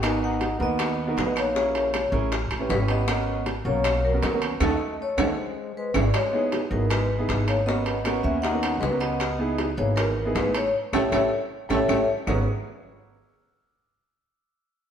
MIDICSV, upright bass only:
0, 0, Header, 1, 2, 480
1, 0, Start_track
1, 0, Key_signature, 5, "minor"
1, 0, Tempo, 382897
1, 29, Time_signature, 4, 2, 24, 8
1, 18685, End_track
2, 0, Start_track
2, 0, Title_t, "Upright bass"
2, 0, Program_c, 0, 32
2, 0, Note_on_c, 0, 32, 83
2, 671, Note_off_c, 0, 32, 0
2, 749, Note_on_c, 0, 39, 93
2, 1417, Note_off_c, 0, 39, 0
2, 1464, Note_on_c, 0, 34, 82
2, 2589, Note_off_c, 0, 34, 0
2, 2658, Note_on_c, 0, 33, 103
2, 3106, Note_off_c, 0, 33, 0
2, 3139, Note_on_c, 0, 33, 71
2, 3364, Note_off_c, 0, 33, 0
2, 3377, Note_on_c, 0, 32, 90
2, 4505, Note_off_c, 0, 32, 0
2, 4574, Note_on_c, 0, 35, 92
2, 5247, Note_off_c, 0, 35, 0
2, 5293, Note_on_c, 0, 39, 82
2, 5743, Note_off_c, 0, 39, 0
2, 5770, Note_on_c, 0, 39, 94
2, 5953, Note_off_c, 0, 39, 0
2, 6485, Note_on_c, 0, 39, 94
2, 6671, Note_off_c, 0, 39, 0
2, 7448, Note_on_c, 0, 32, 89
2, 7632, Note_off_c, 0, 32, 0
2, 8407, Note_on_c, 0, 32, 96
2, 9084, Note_off_c, 0, 32, 0
2, 9132, Note_on_c, 0, 32, 86
2, 10264, Note_off_c, 0, 32, 0
2, 10329, Note_on_c, 0, 39, 95
2, 11006, Note_off_c, 0, 39, 0
2, 11050, Note_on_c, 0, 37, 83
2, 12184, Note_off_c, 0, 37, 0
2, 12256, Note_on_c, 0, 32, 104
2, 12931, Note_off_c, 0, 32, 0
2, 12972, Note_on_c, 0, 33, 86
2, 13425, Note_off_c, 0, 33, 0
2, 13698, Note_on_c, 0, 33, 82
2, 13880, Note_off_c, 0, 33, 0
2, 13935, Note_on_c, 0, 33, 91
2, 14119, Note_off_c, 0, 33, 0
2, 14662, Note_on_c, 0, 33, 90
2, 14843, Note_off_c, 0, 33, 0
2, 14897, Note_on_c, 0, 33, 85
2, 15081, Note_off_c, 0, 33, 0
2, 15384, Note_on_c, 0, 32, 86
2, 15609, Note_off_c, 0, 32, 0
2, 18685, End_track
0, 0, End_of_file